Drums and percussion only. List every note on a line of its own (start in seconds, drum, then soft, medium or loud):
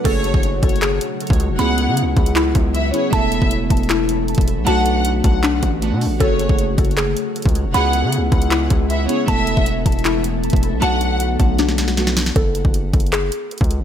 0.05 kick loud
0.05 closed hi-hat medium
0.05 crash loud
0.24 closed hi-hat medium
0.34 kick loud
0.43 closed hi-hat medium
0.63 kick loud
0.63 closed hi-hat medium
0.63 open hi-hat medium
0.69 closed hi-hat medium
0.76 closed hi-hat soft
0.82 clap loud
0.82 closed hi-hat medium
1.01 closed hi-hat medium
1.20 closed hi-hat medium
1.27 kick loud
1.27 closed hi-hat medium
1.33 closed hi-hat medium
1.40 closed hi-hat medium
1.59 closed hi-hat medium
1.78 closed hi-hat medium
1.97 closed hi-hat loud
2.17 kick loud
2.17 closed hi-hat soft
2.26 closed hi-hat medium
2.35 clap loud
2.35 closed hi-hat medium
2.55 kick medium
2.55 closed hi-hat medium
2.75 closed hi-hat medium
2.94 closed hi-hat medium
3.13 kick loud
3.13 closed hi-hat medium
3.32 closed hi-hat medium
3.42 kick medium
3.51 closed hi-hat medium
3.70 kick loud
3.70 closed hi-hat medium
3.70 open hi-hat medium
3.77 closed hi-hat medium
3.83 closed hi-hat soft
3.89 clap loud
3.89 closed hi-hat medium
4.09 closed hi-hat medium
4.28 closed hi-hat medium
4.35 kick loud
4.35 closed hi-hat medium
4.41 closed hi-hat medium
4.48 closed hi-hat medium
4.67 closed hi-hat medium
4.86 closed hi-hat medium
5.05 closed hi-hat medium
5.24 kick loud
5.24 closed hi-hat medium
5.43 clap loud
5.43 closed hi-hat medium
5.63 kick medium
5.63 closed hi-hat medium
5.82 closed hi-hat medium
6.01 open hi-hat medium
6.20 kick loud
6.20 closed hi-hat medium
6.39 closed hi-hat medium
6.49 kick loud
6.59 closed hi-hat medium
6.78 kick loud
6.78 closed hi-hat medium
6.78 open hi-hat medium
6.85 closed hi-hat medium
6.91 closed hi-hat soft
6.97 clap loud
6.97 closed hi-hat medium
7.17 closed hi-hat medium
7.36 closed hi-hat medium
7.42 kick loud
7.42 closed hi-hat medium
7.49 closed hi-hat medium
7.55 closed hi-hat medium
7.74 closed hi-hat medium
7.93 closed hi-hat medium
8.12 closed hi-hat medium
8.32 kick loud
8.32 closed hi-hat soft
8.42 closed hi-hat medium
8.51 clap loud
8.51 closed hi-hat medium
8.70 kick medium
8.70 closed hi-hat medium
8.90 closed hi-hat medium
9.09 closed hi-hat medium
9.28 kick loud
9.28 closed hi-hat medium
9.47 closed hi-hat medium
9.57 kick loud
9.66 closed hi-hat medium
9.86 kick loud
9.86 closed hi-hat medium
9.86 open hi-hat medium
9.92 closed hi-hat medium
9.99 closed hi-hat soft
10.05 clap loud
10.05 closed hi-hat medium
10.24 closed hi-hat medium
10.44 closed hi-hat medium
10.50 kick loud
10.50 closed hi-hat medium
10.56 closed hi-hat medium
10.63 closed hi-hat medium
10.82 closed hi-hat medium
11.01 closed hi-hat medium
11.20 closed hi-hat loud
11.40 kick loud
11.40 closed hi-hat medium
11.59 snare medium
11.59 closed hi-hat medium
11.69 snare medium
11.78 snare medium
11.78 closed hi-hat medium
11.88 snare medium
11.97 snare medium
11.97 closed hi-hat medium
12.07 snare medium
12.17 snare loud
12.17 open hi-hat medium
12.26 snare loud
12.36 kick loud
12.36 closed hi-hat medium
12.55 closed hi-hat medium
12.65 kick loud
12.74 closed hi-hat medium
12.93 kick loud
12.93 closed hi-hat medium
12.93 open hi-hat medium
13.00 closed hi-hat medium
13.06 closed hi-hat soft
13.12 clap loud
13.12 closed hi-hat medium
13.32 closed hi-hat medium
13.51 closed hi-hat medium
13.58 kick medium
13.58 closed hi-hat medium
13.64 closed hi-hat medium
13.71 closed hi-hat medium